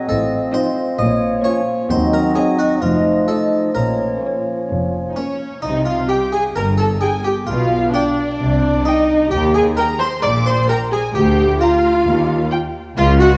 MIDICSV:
0, 0, Header, 1, 11, 480
1, 0, Start_track
1, 0, Key_signature, -5, "minor"
1, 0, Tempo, 455581
1, 89, Time_signature, 4, 2, 24, 8
1, 2969, Tempo, 465839
1, 5870, Key_signature, -3, "minor"
1, 8249, Tempo, 457317
1, 13947, End_track
2, 0, Start_track
2, 0, Title_t, "Violin section"
2, 0, Program_c, 0, 48
2, 577, Note_on_c, 0, 75, 55
2, 928, Note_off_c, 0, 75, 0
2, 1530, Note_on_c, 0, 73, 64
2, 1885, Note_off_c, 0, 73, 0
2, 2497, Note_on_c, 0, 75, 56
2, 2851, Note_off_c, 0, 75, 0
2, 3456, Note_on_c, 0, 75, 48
2, 3811, Note_off_c, 0, 75, 0
2, 4420, Note_on_c, 0, 73, 40
2, 4779, Note_off_c, 0, 73, 0
2, 5392, Note_on_c, 0, 73, 38
2, 5750, Note_off_c, 0, 73, 0
2, 6355, Note_on_c, 0, 79, 42
2, 6437, Note_off_c, 0, 79, 0
2, 7302, Note_on_c, 0, 79, 48
2, 7385, Note_off_c, 0, 79, 0
2, 8259, Note_on_c, 0, 79, 44
2, 8343, Note_off_c, 0, 79, 0
2, 9226, Note_on_c, 0, 79, 54
2, 9310, Note_off_c, 0, 79, 0
2, 10179, Note_on_c, 0, 79, 51
2, 10263, Note_off_c, 0, 79, 0
2, 11137, Note_on_c, 0, 79, 55
2, 11221, Note_off_c, 0, 79, 0
2, 12105, Note_on_c, 0, 82, 55
2, 12189, Note_off_c, 0, 82, 0
2, 13047, Note_on_c, 0, 79, 62
2, 13131, Note_off_c, 0, 79, 0
2, 13947, End_track
3, 0, Start_track
3, 0, Title_t, "Violin section"
3, 0, Program_c, 1, 48
3, 561, Note_on_c, 1, 65, 59
3, 920, Note_off_c, 1, 65, 0
3, 1535, Note_on_c, 1, 65, 65
3, 1888, Note_off_c, 1, 65, 0
3, 2492, Note_on_c, 1, 66, 64
3, 2849, Note_off_c, 1, 66, 0
3, 3446, Note_on_c, 1, 65, 44
3, 3806, Note_off_c, 1, 65, 0
3, 4417, Note_on_c, 1, 65, 34
3, 4777, Note_off_c, 1, 65, 0
3, 5392, Note_on_c, 1, 65, 37
3, 5393, Note_on_c, 1, 73, 43
3, 5750, Note_off_c, 1, 65, 0
3, 5840, Note_off_c, 1, 73, 0
3, 5875, Note_on_c, 1, 75, 67
3, 5958, Note_off_c, 1, 75, 0
3, 6119, Note_on_c, 1, 77, 54
3, 6348, Note_off_c, 1, 77, 0
3, 6356, Note_on_c, 1, 79, 62
3, 6586, Note_off_c, 1, 79, 0
3, 6597, Note_on_c, 1, 80, 65
3, 6680, Note_off_c, 1, 80, 0
3, 6833, Note_on_c, 1, 82, 65
3, 6916, Note_off_c, 1, 82, 0
3, 7069, Note_on_c, 1, 81, 63
3, 7152, Note_off_c, 1, 81, 0
3, 7310, Note_on_c, 1, 80, 64
3, 7537, Note_off_c, 1, 80, 0
3, 7537, Note_on_c, 1, 79, 61
3, 7620, Note_off_c, 1, 79, 0
3, 7789, Note_on_c, 1, 77, 66
3, 8248, Note_off_c, 1, 77, 0
3, 8249, Note_on_c, 1, 74, 63
3, 9192, Note_off_c, 1, 74, 0
3, 9209, Note_on_c, 1, 75, 67
3, 9691, Note_on_c, 1, 79, 72
3, 9692, Note_off_c, 1, 75, 0
3, 9775, Note_off_c, 1, 79, 0
3, 9947, Note_on_c, 1, 80, 64
3, 10031, Note_off_c, 1, 80, 0
3, 10174, Note_on_c, 1, 82, 76
3, 10410, Note_off_c, 1, 82, 0
3, 10428, Note_on_c, 1, 84, 73
3, 10663, Note_off_c, 1, 84, 0
3, 10672, Note_on_c, 1, 86, 78
3, 10901, Note_off_c, 1, 86, 0
3, 10922, Note_on_c, 1, 84, 76
3, 11147, Note_on_c, 1, 82, 79
3, 11151, Note_off_c, 1, 84, 0
3, 11231, Note_off_c, 1, 82, 0
3, 11377, Note_on_c, 1, 80, 72
3, 11613, Note_off_c, 1, 80, 0
3, 11629, Note_on_c, 1, 79, 72
3, 12094, Note_off_c, 1, 79, 0
3, 12102, Note_on_c, 1, 77, 84
3, 13036, Note_off_c, 1, 77, 0
3, 13532, Note_on_c, 1, 77, 84
3, 13616, Note_off_c, 1, 77, 0
3, 13777, Note_on_c, 1, 78, 80
3, 13861, Note_off_c, 1, 78, 0
3, 13947, End_track
4, 0, Start_track
4, 0, Title_t, "Flute section"
4, 0, Program_c, 2, 73
4, 0, Note_on_c, 2, 75, 59
4, 1043, Note_off_c, 2, 75, 0
4, 1048, Note_on_c, 2, 73, 62
4, 1742, Note_off_c, 2, 73, 0
4, 2017, Note_on_c, 2, 75, 63
4, 3898, Note_off_c, 2, 75, 0
4, 3945, Note_on_c, 2, 73, 41
4, 5601, Note_off_c, 2, 73, 0
4, 13947, End_track
5, 0, Start_track
5, 0, Title_t, "Harpsichord"
5, 0, Program_c, 3, 6
5, 93, Note_on_c, 3, 69, 81
5, 536, Note_off_c, 3, 69, 0
5, 568, Note_on_c, 3, 72, 78
5, 1013, Note_off_c, 3, 72, 0
5, 1041, Note_on_c, 3, 75, 105
5, 1489, Note_off_c, 3, 75, 0
5, 1518, Note_on_c, 3, 73, 78
5, 1968, Note_off_c, 3, 73, 0
5, 2005, Note_on_c, 3, 72, 90
5, 2228, Note_off_c, 3, 72, 0
5, 2249, Note_on_c, 3, 70, 78
5, 2471, Note_off_c, 3, 70, 0
5, 2481, Note_on_c, 3, 68, 79
5, 2707, Note_off_c, 3, 68, 0
5, 2726, Note_on_c, 3, 66, 74
5, 2952, Note_off_c, 3, 66, 0
5, 2969, Note_on_c, 3, 65, 71
5, 3414, Note_off_c, 3, 65, 0
5, 3445, Note_on_c, 3, 69, 66
5, 3895, Note_off_c, 3, 69, 0
5, 3927, Note_on_c, 3, 70, 50
5, 5342, Note_off_c, 3, 70, 0
5, 5385, Note_on_c, 3, 61, 43
5, 5835, Note_off_c, 3, 61, 0
5, 5860, Note_on_c, 3, 63, 60
5, 6087, Note_off_c, 3, 63, 0
5, 6099, Note_on_c, 3, 65, 53
5, 6326, Note_off_c, 3, 65, 0
5, 6341, Note_on_c, 3, 67, 64
5, 6566, Note_off_c, 3, 67, 0
5, 6584, Note_on_c, 3, 68, 64
5, 6807, Note_off_c, 3, 68, 0
5, 6822, Note_on_c, 3, 70, 65
5, 7044, Note_off_c, 3, 70, 0
5, 7047, Note_on_c, 3, 69, 56
5, 7275, Note_off_c, 3, 69, 0
5, 7284, Note_on_c, 3, 68, 70
5, 7512, Note_off_c, 3, 68, 0
5, 7528, Note_on_c, 3, 67, 53
5, 7753, Note_off_c, 3, 67, 0
5, 7759, Note_on_c, 3, 65, 56
5, 8209, Note_off_c, 3, 65, 0
5, 8245, Note_on_c, 3, 62, 64
5, 9167, Note_off_c, 3, 62, 0
5, 9206, Note_on_c, 3, 63, 69
5, 9657, Note_off_c, 3, 63, 0
5, 9685, Note_on_c, 3, 67, 80
5, 9913, Note_off_c, 3, 67, 0
5, 9927, Note_on_c, 3, 68, 64
5, 10154, Note_off_c, 3, 68, 0
5, 10165, Note_on_c, 3, 70, 70
5, 10394, Note_off_c, 3, 70, 0
5, 10414, Note_on_c, 3, 72, 79
5, 10639, Note_off_c, 3, 72, 0
5, 10643, Note_on_c, 3, 74, 88
5, 10874, Note_off_c, 3, 74, 0
5, 10892, Note_on_c, 3, 72, 73
5, 11119, Note_off_c, 3, 72, 0
5, 11135, Note_on_c, 3, 70, 87
5, 11360, Note_off_c, 3, 70, 0
5, 11381, Note_on_c, 3, 68, 64
5, 11603, Note_off_c, 3, 68, 0
5, 11615, Note_on_c, 3, 67, 84
5, 12063, Note_off_c, 3, 67, 0
5, 12095, Note_on_c, 3, 65, 71
5, 13009, Note_off_c, 3, 65, 0
5, 13534, Note_on_c, 3, 65, 85
5, 13757, Note_off_c, 3, 65, 0
5, 13772, Note_on_c, 3, 66, 75
5, 13947, Note_off_c, 3, 66, 0
5, 13947, End_track
6, 0, Start_track
6, 0, Title_t, "Viola section"
6, 0, Program_c, 4, 48
6, 559, Note_on_c, 4, 60, 69
6, 919, Note_off_c, 4, 60, 0
6, 1517, Note_on_c, 4, 58, 61
6, 1878, Note_off_c, 4, 58, 0
6, 2483, Note_on_c, 4, 60, 64
6, 2844, Note_off_c, 4, 60, 0
6, 3445, Note_on_c, 4, 57, 38
6, 3805, Note_off_c, 4, 57, 0
6, 4417, Note_on_c, 4, 58, 41
6, 4777, Note_off_c, 4, 58, 0
6, 5318, Note_on_c, 4, 63, 40
6, 5387, Note_on_c, 4, 58, 37
6, 5388, Note_off_c, 4, 63, 0
6, 5393, Note_on_c, 4, 61, 48
6, 5747, Note_off_c, 4, 58, 0
6, 5863, Note_on_c, 4, 63, 80
6, 5873, Note_off_c, 4, 61, 0
6, 6101, Note_off_c, 4, 63, 0
6, 6113, Note_on_c, 4, 65, 63
6, 6345, Note_off_c, 4, 65, 0
6, 6351, Note_on_c, 4, 67, 75
6, 6588, Note_off_c, 4, 67, 0
6, 6597, Note_on_c, 4, 68, 81
6, 6679, Note_off_c, 4, 68, 0
6, 6841, Note_on_c, 4, 70, 72
6, 6924, Note_off_c, 4, 70, 0
6, 7073, Note_on_c, 4, 69, 67
6, 7156, Note_off_c, 4, 69, 0
6, 7305, Note_on_c, 4, 68, 65
6, 7388, Note_off_c, 4, 68, 0
6, 7536, Note_on_c, 4, 67, 58
6, 7619, Note_off_c, 4, 67, 0
6, 7774, Note_on_c, 4, 65, 72
6, 8241, Note_off_c, 4, 65, 0
6, 8256, Note_on_c, 4, 62, 78
6, 9196, Note_off_c, 4, 62, 0
6, 9214, Note_on_c, 4, 63, 75
6, 9689, Note_on_c, 4, 67, 92
6, 9695, Note_off_c, 4, 63, 0
6, 9928, Note_off_c, 4, 67, 0
6, 9935, Note_on_c, 4, 68, 82
6, 10019, Note_off_c, 4, 68, 0
6, 10170, Note_on_c, 4, 70, 80
6, 10254, Note_off_c, 4, 70, 0
6, 10417, Note_on_c, 4, 72, 93
6, 10501, Note_off_c, 4, 72, 0
6, 10654, Note_on_c, 4, 74, 97
6, 10738, Note_off_c, 4, 74, 0
6, 10897, Note_on_c, 4, 72, 87
6, 11132, Note_on_c, 4, 70, 81
6, 11134, Note_off_c, 4, 72, 0
6, 11216, Note_off_c, 4, 70, 0
6, 11375, Note_on_c, 4, 68, 83
6, 11459, Note_off_c, 4, 68, 0
6, 11623, Note_on_c, 4, 67, 101
6, 12091, Note_off_c, 4, 67, 0
6, 12097, Note_on_c, 4, 65, 87
6, 13033, Note_off_c, 4, 65, 0
6, 13537, Note_on_c, 4, 65, 120
6, 13758, Note_off_c, 4, 65, 0
6, 13771, Note_on_c, 4, 66, 97
6, 13947, Note_off_c, 4, 66, 0
6, 13947, End_track
7, 0, Start_track
7, 0, Title_t, "Clarinet"
7, 0, Program_c, 5, 71
7, 0, Note_on_c, 5, 60, 56
7, 1039, Note_on_c, 5, 58, 65
7, 1055, Note_off_c, 5, 60, 0
7, 1997, Note_on_c, 5, 60, 58
7, 2013, Note_off_c, 5, 58, 0
7, 2964, Note_on_c, 5, 57, 56
7, 2979, Note_off_c, 5, 60, 0
7, 3928, Note_off_c, 5, 57, 0
7, 3944, Note_on_c, 5, 58, 40
7, 5601, Note_off_c, 5, 58, 0
7, 13947, End_track
8, 0, Start_track
8, 0, Title_t, "French horn section"
8, 0, Program_c, 6, 60
8, 561, Note_on_c, 6, 63, 56
8, 564, Note_on_c, 6, 53, 44
8, 729, Note_off_c, 6, 63, 0
8, 732, Note_off_c, 6, 53, 0
8, 1524, Note_on_c, 6, 61, 59
8, 1530, Note_on_c, 6, 53, 56
8, 1693, Note_off_c, 6, 61, 0
8, 1698, Note_off_c, 6, 53, 0
8, 2005, Note_on_c, 6, 63, 65
8, 2008, Note_on_c, 6, 54, 58
8, 2927, Note_off_c, 6, 63, 0
8, 2928, Note_off_c, 6, 54, 0
8, 2969, Note_on_c, 6, 63, 57
8, 2974, Note_on_c, 6, 53, 57
8, 3438, Note_off_c, 6, 63, 0
8, 3445, Note_off_c, 6, 53, 0
8, 3453, Note_on_c, 6, 63, 42
8, 3457, Note_on_c, 6, 53, 42
8, 3909, Note_off_c, 6, 53, 0
8, 3918, Note_on_c, 6, 61, 40
8, 3921, Note_on_c, 6, 53, 39
8, 3924, Note_off_c, 6, 63, 0
8, 5587, Note_off_c, 6, 61, 0
8, 5589, Note_off_c, 6, 53, 0
8, 13947, End_track
9, 0, Start_track
9, 0, Title_t, "Bassoon"
9, 0, Program_c, 7, 70
9, 95, Note_on_c, 7, 53, 54
9, 1971, Note_off_c, 7, 53, 0
9, 2012, Note_on_c, 7, 54, 61
9, 2966, Note_on_c, 7, 53, 50
9, 2982, Note_off_c, 7, 54, 0
9, 5626, Note_off_c, 7, 53, 0
9, 13947, End_track
10, 0, Start_track
10, 0, Title_t, "Cello section"
10, 0, Program_c, 8, 48
10, 100, Note_on_c, 8, 45, 72
10, 473, Note_off_c, 8, 45, 0
10, 1059, Note_on_c, 8, 46, 78
10, 1432, Note_off_c, 8, 46, 0
10, 2018, Note_on_c, 8, 39, 69
10, 2391, Note_off_c, 8, 39, 0
10, 2984, Note_on_c, 8, 41, 62
10, 3355, Note_off_c, 8, 41, 0
10, 3945, Note_on_c, 8, 46, 48
10, 4321, Note_off_c, 8, 46, 0
10, 4909, Note_on_c, 8, 41, 45
10, 5288, Note_off_c, 8, 41, 0
10, 5880, Note_on_c, 8, 48, 58
10, 6274, Note_off_c, 8, 48, 0
10, 6833, Note_on_c, 8, 43, 54
10, 7225, Note_off_c, 8, 43, 0
10, 7779, Note_on_c, 8, 47, 68
10, 8173, Note_off_c, 8, 47, 0
10, 8741, Note_on_c, 8, 48, 56
10, 9136, Note_off_c, 8, 48, 0
10, 9696, Note_on_c, 8, 39, 70
10, 10096, Note_off_c, 8, 39, 0
10, 10663, Note_on_c, 8, 46, 72
10, 11062, Note_off_c, 8, 46, 0
10, 11622, Note_on_c, 8, 38, 79
10, 12020, Note_off_c, 8, 38, 0
10, 12582, Note_on_c, 8, 39, 78
10, 12976, Note_off_c, 8, 39, 0
10, 13538, Note_on_c, 8, 37, 90
10, 13935, Note_off_c, 8, 37, 0
10, 13947, End_track
11, 0, Start_track
11, 0, Title_t, "Double bass section"
11, 0, Program_c, 10, 48
11, 99, Note_on_c, 10, 33, 69
11, 472, Note_off_c, 10, 33, 0
11, 1055, Note_on_c, 10, 34, 68
11, 1430, Note_off_c, 10, 34, 0
11, 2018, Note_on_c, 10, 39, 76
11, 2391, Note_off_c, 10, 39, 0
11, 2980, Note_on_c, 10, 29, 54
11, 3353, Note_off_c, 10, 29, 0
11, 3936, Note_on_c, 10, 34, 49
11, 4316, Note_off_c, 10, 34, 0
11, 4905, Note_on_c, 10, 29, 39
11, 5286, Note_off_c, 10, 29, 0
11, 5877, Note_on_c, 10, 36, 55
11, 6272, Note_off_c, 10, 36, 0
11, 6832, Note_on_c, 10, 31, 53
11, 7225, Note_off_c, 10, 31, 0
11, 7782, Note_on_c, 10, 35, 62
11, 8175, Note_off_c, 10, 35, 0
11, 8741, Note_on_c, 10, 36, 57
11, 9136, Note_off_c, 10, 36, 0
11, 9704, Note_on_c, 10, 39, 58
11, 10100, Note_off_c, 10, 39, 0
11, 10666, Note_on_c, 10, 34, 62
11, 11064, Note_off_c, 10, 34, 0
11, 11629, Note_on_c, 10, 38, 71
11, 12024, Note_off_c, 10, 38, 0
11, 12588, Note_on_c, 10, 39, 67
11, 12979, Note_off_c, 10, 39, 0
11, 13541, Note_on_c, 10, 37, 77
11, 13937, Note_off_c, 10, 37, 0
11, 13947, End_track
0, 0, End_of_file